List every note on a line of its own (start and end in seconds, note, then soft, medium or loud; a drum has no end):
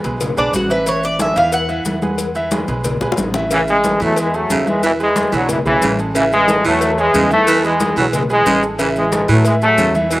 0.04 0.35 B1 medium
0.04 0.31 G#3 medium
0.04 0.31 G#4 medium
0.04 0.32 B4 medium
0.04 cowbell medium
0.04 high conga soft
0.04 maracas soft
0.21 cowbell loud
0.21 high conga soft
0.21 low conga medium
0.21 maracas medium
0.37 0.53 B1 medium
0.37 0.64 G#3 medium
0.37 0.54 D4 loud
0.37 0.64 G#4 medium
0.37 0.65 B4 medium
0.37 high conga soft
0.37 maracas soft
0.53 1.30 A1 medium
0.53 0.71 F#4 medium
0.53 cowbell medium
0.53 high conga medium
0.53 maracas medium
0.70 0.84 E3 medium
0.70 0.84 E4 medium
0.70 0.87 B4 medium
0.70 0.84 E5 loud
0.70 high conga soft
0.70 maracas soft
0.86 1.13 E3 medium
0.86 1.14 E4 medium
0.86 1.04 C#5 loud
0.86 1.14 E5 medium
0.86 cowbell loud
0.86 high conga soft
0.86 maracas medium
1.03 1.20 D5 loud
1.03 high conga soft
1.03 maracas soft
1.19 1.33 G#3 medium
1.19 1.33 G#4 medium
1.19 1.33 A4 medium
1.19 1.37 E5 medium
1.19 cowbell medium
1.19 high conga medium
1.19 maracas medium
1.36 1.82 E2 medium
1.36 1.63 E3 medium
1.36 1.63 E4 loud
1.36 1.63 E5 loud
1.36 1.53 F5 loud
1.36 cowbell medium
1.36 high conga soft
1.36 maracas soft
1.52 2.48 F#5 medium
1.52 cowbell loud
1.52 high conga soft
1.52 maracas medium
1.69 1.96 E3 loud
1.69 1.96 E4 loud
1.69 1.96 E5 medium
1.69 high conga soft
1.69 maracas soft
1.85 2.63 E2 medium
1.85 cowbell medium
1.85 high conga medium
1.85 maracas medium
2.02 2.29 G#3 medium
2.02 2.30 G#4 medium
2.02 2.30 B4 medium
2.02 high conga medium
2.02 maracas soft
2.18 cowbell loud
2.18 high conga soft
2.18 maracas medium
2.35 2.49 E3 medium
2.35 2.49 E4 loud
2.35 2.49 E5 loud
2.35 high conga soft
2.35 maracas soft
2.51 2.65 G#3 medium
2.51 2.66 G#4 medium
2.51 2.66 B4 medium
2.51 cowbell medium
2.51 high conga loud
2.51 maracas medium
2.68 2.99 B1 medium
2.68 2.95 G#3 medium
2.68 2.96 G#4 medium
2.68 2.96 B4 medium
2.68 cowbell medium
2.68 high conga soft
2.68 maracas soft
2.84 cowbell loud
2.84 high conga soft
2.84 low conga medium
2.84 maracas medium
3.01 3.17 B1 medium
3.01 3.29 G#3 medium
3.01 3.29 G#4 medium
3.01 3.29 B4 medium
3.01 high bongo medium
3.01 high conga soft
3.01 maracas soft
3.12 high bongo loud
3.17 3.95 A1 medium
3.17 cowbell medium
3.17 high conga medium
3.17 maracas medium
3.34 3.48 E3 medium
3.34 3.49 E4 medium
3.34 3.49 E5 medium
3.34 low bongo loud
3.34 high conga soft
3.34 maracas soft
3.51 3.78 C#3 medium
3.51 3.60 C#3 medium
3.51 3.78 E3 medium
3.51 3.60 E3 loud
3.51 3.78 E4 medium
3.51 3.79 E5 medium
3.51 cowbell loud
3.51 high conga soft
3.51 maracas medium
3.68 3.99 E3 medium
3.68 3.99 G#3 loud
3.68 high conga soft
3.68 maracas soft
3.84 4.11 A3 medium
3.84 4.12 G#4 medium
3.84 4.12 A4 medium
3.84 cowbell medium
3.84 high conga loud
3.84 maracas medium
4.00 4.47 E2 loud
4.00 4.28 E3 medium
4.00 4.17 F#3 medium
4.00 4.17 A3 loud
4.00 cowbell medium
4.00 high conga soft
4.00 maracas soft
4.16 4.31 E3 medium
4.16 4.35 E3 medium
4.16 4.35 G#3 loud
4.16 4.31 E4 medium
4.16 4.31 E5 medium
4.16 cowbell loud
4.16 high conga soft
4.16 maracas medium
4.34 4.67 F#3 medium
4.34 4.61 A3 medium
4.34 4.67 A3 loud
4.34 4.61 G#4 medium
4.34 4.61 A4 medium
4.34 high conga soft
4.34 maracas soft
4.50 5.27 E2 medium
4.50 4.68 C#3 medium
4.50 cowbell medium
4.50 high conga medium
4.50 maracas medium
4.67 4.94 E3 medium
4.67 4.83 E3 medium
4.67 4.83 G#3 loud
4.67 4.94 E4 medium
4.67 4.94 E5 medium
4.67 high conga medium
4.67 maracas soft
4.83 4.92 B2 medium
4.83 5.10 E3 medium
4.83 4.92 E3 loud
4.83 cowbell loud
4.83 maracas medium
5.00 5.31 E3 medium
5.00 5.27 G#3 medium
5.00 5.31 G#3 loud
5.00 5.27 G#4 medium
5.00 5.27 B4 medium
5.00 high conga soft
5.00 maracas soft
5.16 cowbell medium
5.16 high conga loud
5.16 maracas medium
5.32 5.63 B1 loud
5.32 5.49 D3 medium
5.32 5.59 E3 medium
5.32 5.49 F#3 loud
5.32 5.59 G#3 medium
5.32 5.59 G#4 medium
5.32 5.60 B4 medium
5.32 cowbell medium
5.32 high conga soft
5.32 maracas soft
5.49 5.58 B2 medium
5.49 5.58 E3 medium
5.49 cowbell loud
5.49 high conga soft
5.49 low conga medium
5.49 maracas medium
5.65 5.81 B1 medium
5.65 5.97 C#3 medium
5.65 5.97 E3 loud
5.65 5.92 G#3 medium
5.65 5.93 G#4 medium
5.65 5.93 B4 medium
5.65 high conga soft
5.65 low conga medium
5.65 maracas soft
5.82 6.59 A1 medium
5.82 6.00 C#3 medium
5.82 cowbell medium
5.82 high conga medium
5.82 maracas medium
5.99 6.12 G#3 medium
5.99 6.13 G#4 medium
5.99 6.13 A4 medium
5.99 high conga soft
5.99 maracas soft
6.15 6.42 C#3 medium
6.15 6.24 C#3 medium
6.15 6.42 E3 medium
6.15 6.24 E3 medium
6.15 6.43 E4 medium
6.15 6.43 E5 medium
6.15 cowbell loud
6.15 high conga soft
6.15 maracas medium
6.32 6.63 E3 medium
6.32 6.63 G#3 loud
6.32 high conga soft
6.32 maracas soft
6.48 6.75 A3 medium
6.48 6.75 G#4 medium
6.48 6.76 A4 medium
6.48 cowbell medium
6.48 high conga medium
6.48 maracas medium
6.65 7.11 E2 medium
6.65 6.91 E3 medium
6.65 6.96 F#3 medium
6.65 6.96 A3 loud
6.65 cowbell medium
6.65 high conga soft
6.65 maracas soft
6.81 6.95 E3 medium
6.81 6.95 E4 medium
6.81 6.95 E5 medium
6.81 cowbell loud
6.81 high conga soft
6.81 maracas medium
6.98 7.25 E3 medium
6.98 7.29 E3 medium
6.98 7.29 G#3 loud
6.98 7.25 G#4 medium
6.98 7.25 C#5 medium
6.98 high conga soft
6.98 maracas soft
7.14 7.91 E2 medium
7.14 7.32 C#3 medium
7.14 cowbell medium
7.14 high conga medium
7.14 maracas medium
7.30 7.57 E3 medium
7.30 7.62 E3 medium
7.30 7.62 A3 loud
7.30 7.58 E4 loud
7.30 7.58 E5 medium
7.30 high conga medium
7.30 maracas soft
7.47 7.74 E3 medium
7.47 cowbell loud
7.47 high conga soft
7.47 maracas medium
7.64 7.95 E3 medium
7.64 7.91 G#3 medium
7.64 7.95 G#3 loud
7.64 7.91 G#4 medium
7.64 7.91 B4 medium
7.64 high conga soft
7.64 maracas soft
7.80 cowbell medium
7.80 high conga loud
7.80 maracas medium
7.97 8.43 B1 loud
7.97 8.06 D3 medium
7.97 8.24 E3 medium
7.97 8.05 F#3 medium
7.97 8.24 G#3 medium
7.97 8.24 G#4 medium
7.97 8.24 B4 medium
7.97 cowbell medium
7.97 high conga soft
7.97 maracas soft
8.13 8.22 E3 medium
8.13 8.21 G#3 medium
8.13 cowbell loud
8.13 high conga soft
8.13 low conga medium
8.13 maracas medium
8.30 8.62 E3 medium
8.30 8.57 G#3 medium
8.30 8.61 G#3 loud
8.30 8.57 G#4 medium
8.30 8.57 B4 medium
8.30 high conga soft
8.30 maracas soft
8.46 9.23 A1 medium
8.46 8.64 C#3 medium
8.46 cowbell medium
8.46 high conga medium
8.46 maracas medium
8.62 8.76 G#3 medium
8.62 8.76 G#4 medium
8.62 8.76 A4 medium
8.62 high conga soft
8.62 maracas soft
8.79 9.06 C#3 medium
8.79 8.88 C#3 medium
8.79 9.06 E3 medium
8.79 8.88 E3 loud
8.79 9.06 E4 loud
8.79 9.06 E5 medium
8.79 cowbell loud
8.79 high conga soft
8.79 maracas medium
8.96 9.28 E3 medium
8.96 9.27 G#3 loud
8.96 high conga soft
8.96 maracas soft
9.11 9.39 A3 medium
9.11 9.39 G#4 medium
9.11 9.39 A4 medium
9.11 cowbell medium
9.11 high conga loud
9.11 maracas medium
9.28 9.75 A2 loud
9.28 9.55 E3 medium
9.28 9.45 F#3 medium
9.28 9.45 A3 medium
9.28 cowbell medium
9.28 high conga soft
9.28 maracas soft
9.45 9.59 E3 medium
9.45 9.54 E3 medium
9.45 9.54 G#3 medium
9.45 9.59 E4 medium
9.45 9.59 E5 medium
9.45 cowbell loud
9.45 high conga soft
9.45 maracas medium
9.62 9.93 F#3 medium
9.62 9.89 A3 medium
9.62 9.93 A3 loud
9.62 9.89 G#4 medium
9.62 9.89 A4 medium
9.62 high conga soft
9.62 maracas soft
9.78 10.20 E2 medium
9.78 9.95 C#3 medium
9.78 cowbell medium
9.78 high conga medium
9.78 maracas medium
9.95 10.20 E3 medium
9.95 10.20 E4 medium
9.95 10.20 E5 medium
9.95 high conga medium
9.95 maracas soft
10.11 10.19 B2 medium
10.11 10.20 E3 medium
10.11 10.19 E3 medium
10.11 cowbell loud
10.11 high conga soft
10.11 maracas medium